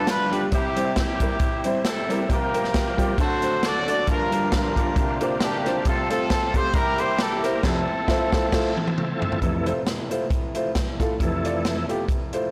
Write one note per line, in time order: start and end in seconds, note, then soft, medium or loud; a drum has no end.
0.00 0.48 G1 medium
0.00 0.48 G2 medium
0.00 0.48 D3 medium
0.00 0.51 F3 medium
0.00 3.15 G3 medium
0.00 0.52 B3 medium
0.00 0.48 F4 medium
0.07 0.42 D4 medium
0.07 0.42 F4 medium
0.07 0.42 B4 loud
0.07 snare loud
0.07 closed hi-hat loud
0.30 0.44 G3 medium
0.30 0.44 D4 medium
0.30 0.44 F4 medium
0.30 0.45 G4 loud
0.30 closed hi-hat medium
0.52 2.26 C2 medium
0.52 2.26 C3 medium
0.52 4.05 C4 medium
0.52 0.97 C4 medium
0.52 2.29 E4 medium
0.52 0.98 E4 medium
0.52 0.95 G4 loud
0.52 kick loud
0.52 closed hi-hat medium
0.76 0.89 G3 medium
0.76 0.89 C4 medium
0.76 0.89 E4 medium
0.76 0.90 C5 medium
0.76 closed hi-hat medium
0.96 1.82 C4 medium
0.96 1.83 E4 medium
0.96 1.62 G4 medium
0.96 kick medium
0.96 snare loud
0.96 closed hi-hat medium
1.20 1.33 G3 medium
1.20 1.33 C4 medium
1.20 1.33 E4 medium
1.20 1.34 A#4 medium
1.20 kick medium
1.20 closed hi-hat medium
1.40 kick loud
1.40 closed hi-hat medium
1.64 1.77 G3 medium
1.64 1.78 C4 medium
1.64 1.78 E4 medium
1.64 1.78 C5 medium
1.64 closed hi-hat medium
1.85 2.27 C4 medium
1.85 2.27 E4 medium
1.85 2.27 A4 medium
1.85 snare loud
1.85 closed hi-hat loud
2.09 2.22 G3 medium
2.09 2.22 C4 medium
2.09 2.22 E4 medium
2.09 2.23 A#4 medium
2.09 closed hi-hat medium
2.29 3.14 C2 medium
2.29 3.14 C3 medium
2.29 3.18 F3 medium
2.29 3.18 A#3 medium
2.29 3.15 F4 medium
2.29 3.18 G4 medium
2.29 3.15 G4 medium
2.29 3.15 A#4 medium
2.29 kick loud
2.29 closed hi-hat medium
2.53 2.66 G3 medium
2.53 2.66 C4 medium
2.53 2.67 F4 medium
2.53 2.67 A#4 medium
2.53 closed hi-hat medium
2.64 snare soft
2.74 kick medium
2.74 snare loud
2.74 closed hi-hat medium
2.97 3.10 G3 medium
2.97 3.11 C4 medium
2.97 3.11 F4 medium
2.97 3.11 G4 loud
2.97 kick medium
2.97 closed hi-hat medium
3.18 4.03 D2 medium
3.18 5.82 D3 medium
3.18 4.03 D3 medium
3.18 4.07 F#3 medium
3.18 4.07 A3 medium
3.18 4.06 F#4 medium
3.18 3.64 F#4 medium
3.18 3.64 A4 medium
3.18 3.64 C5 loud
3.18 kick loud
3.18 closed hi-hat medium
3.42 3.55 A3 medium
3.42 3.55 D4 medium
3.42 3.55 F#4 medium
3.42 3.56 C5 medium
3.42 closed hi-hat medium
3.63 4.05 F#4 medium
3.63 4.05 A4 medium
3.63 4.09 D5 loud
3.63 snare loud
3.63 closed hi-hat loud
3.86 3.99 A3 medium
3.86 4.00 D4 medium
3.86 4.00 F#4 medium
3.86 4.00 D5 medium
3.86 closed hi-hat medium
4.06 4.92 G1 medium
4.06 4.92 G2 medium
4.06 4.95 F3 medium
4.06 5.83 G3 medium
4.06 5.83 A#3 medium
4.06 4.53 D4 medium
4.06 4.95 F4 medium
4.06 4.53 F4 medium
4.06 4.50 A#4 medium
4.06 kick medium
4.06 closed hi-hat medium
4.31 4.44 G3 medium
4.31 4.44 D4 medium
4.31 4.44 F4 medium
4.31 4.45 A#4 medium
4.31 closed hi-hat medium
4.52 5.18 D4 medium
4.52 5.18 F4 medium
4.52 5.19 A#4 medium
4.52 kick medium
4.52 snare loud
4.52 closed hi-hat medium
4.75 4.88 G3 medium
4.75 4.88 D4 medium
4.75 4.89 F4 medium
4.75 4.89 A#4 medium
4.75 kick medium
4.75 closed hi-hat medium
4.96 5.82 C2 medium
4.96 5.81 C3 medium
4.96 9.38 C4 medium
4.96 6.73 F4 medium
4.96 kick loud
4.96 closed hi-hat medium
5.20 5.33 A#3 medium
5.20 5.33 D4 medium
5.20 5.34 F4 medium
5.20 5.34 C5 medium
5.20 closed hi-hat medium
5.40 5.83 A#3 medium
5.40 5.83 D4 medium
5.40 5.84 G4 medium
5.40 snare loud
5.40 closed hi-hat loud
5.64 5.77 A#3 medium
5.64 5.78 D4 medium
5.64 5.78 F4 medium
5.64 5.78 C5 medium
5.64 snare soft
5.64 closed hi-hat medium
5.85 6.71 C2 medium
5.85 6.71 C3 medium
5.85 6.74 C3 medium
5.85 6.74 A3 medium
5.85 6.10 C4 medium
5.85 6.10 F4 medium
5.85 6.10 A4 medium
5.85 kick loud
5.85 closed hi-hat medium
6.09 6.22 A3 medium
6.09 6.22 C4 medium
6.09 6.71 C4 medium
6.09 6.71 F4 medium
6.09 6.23 F4 medium
6.09 6.52 A4 loud
6.09 6.23 C5 medium
6.09 closed hi-hat medium
6.30 kick medium
6.30 snare loud
6.30 closed hi-hat medium
6.54 6.66 A3 medium
6.54 6.67 C4 medium
6.54 6.67 F4 medium
6.54 6.67 G4 medium
6.54 6.75 C5 loud
6.54 kick medium
6.54 closed hi-hat medium
6.74 7.60 C2 medium
6.74 7.60 C3 medium
6.74 7.64 G3 medium
6.74 7.63 A#3 medium
6.74 7.60 E4 medium
6.74 9.40 E4 medium
6.74 7.60 G4 medium
6.74 6.99 A#4 loud
6.74 7.63 A#4 medium
6.74 kick loud
6.74 closed hi-hat medium
6.98 7.11 A#3 medium
6.98 7.11 E4 medium
6.98 7.12 G4 medium
6.98 7.19 C5 loud
6.98 7.12 C5 medium
6.98 closed hi-hat medium
7.18 7.44 A4 medium
7.18 snare loud
7.18 closed hi-hat loud
7.43 7.56 A#3 medium
7.43 7.56 E4 medium
7.43 7.56 G4 medium
7.43 7.64 A#4 medium
7.43 7.56 C5 medium
7.43 snare soft
7.43 closed hi-hat medium
7.63 7.80 F1 loud
7.63 7.80 F2 loud
7.63 9.40 F3 medium
7.63 9.40 A3 medium
7.63 8.94 C4 medium
7.63 8.94 E4 medium
7.63 9.40 A4 medium
7.63 8.94 A4 medium
7.63 kick loud
7.63 snare loud
7.63 crash medium
8.08 8.24 A3 loud
8.08 8.25 E4 loud
8.08 8.25 F4 loud
8.08 8.25 C5 loud
8.08 kick loud
8.08 snare loud
8.32 8.46 A3 loud
8.32 8.46 E4 medium
8.32 8.46 F4 medium
8.32 8.47 C5 medium
8.32 kick loud
8.32 snare loud
8.52 8.69 A3 loud
8.52 8.69 E4 loud
8.52 8.70 F4 loud
8.52 8.70 C5 loud
8.52 kick loud
8.52 snare loud
8.52 crash medium
8.77 high tom medium
8.87 high tom medium
8.98 mid tom medium
9.22 floor tom loud
9.32 floor tom loud
9.41 11.16 F1 medium
9.41 9.72 F2 medium
9.41 11.16 F2 medium
9.41 12.51 E3 medium
9.41 9.72 E3 medium
9.41 12.51 A3 medium
9.41 9.73 A3 medium
9.41 12.51 C4 medium
9.41 12.51 E4 medium
9.41 kick medium
9.41 closed hi-hat medium
9.65 9.78 A3 medium
9.65 9.78 E4 medium
9.65 9.78 F4 medium
9.65 9.79 C5 medium
9.65 closed hi-hat medium
9.87 snare loud
9.87 closed hi-hat medium
10.10 10.22 A3 medium
10.10 10.23 E4 medium
10.10 10.23 F4 medium
10.10 10.23 C5 medium
10.10 closed hi-hat medium
10.30 kick loud
10.30 closed hi-hat medium
10.55 10.67 A3 medium
10.55 10.67 E4 medium
10.55 10.68 F4 medium
10.55 10.68 C5 medium
10.55 closed hi-hat medium
10.75 kick loud
10.75 snare loud
10.75 closed hi-hat loud
10.99 11.12 A3 medium
10.99 11.12 E4 medium
10.99 11.12 F4 medium
10.99 11.13 A4 loud
10.99 kick medium
10.99 snare soft
10.99 closed hi-hat medium
11.19 12.51 F1 medium
11.19 11.85 F2 medium
11.19 12.51 F2 medium
11.19 11.85 E3 soft
11.19 11.86 A3 medium
11.19 kick medium
11.19 closed hi-hat medium
11.44 11.56 A3 medium
11.44 11.56 E4 medium
11.44 11.57 F4 medium
11.44 11.57 D5 medium
11.44 closed hi-hat medium
11.65 snare loud
11.65 closed hi-hat medium
11.88 12.01 A3 medium
11.88 12.01 E4 medium
11.88 12.01 F4 medium
11.88 12.02 G4 medium
11.88 closed hi-hat medium
12.09 kick loud
12.09 closed hi-hat medium
12.33 12.45 A3 medium
12.33 12.46 E4 medium
12.33 12.46 F4 medium
12.33 12.46 C5 medium
12.33 closed hi-hat medium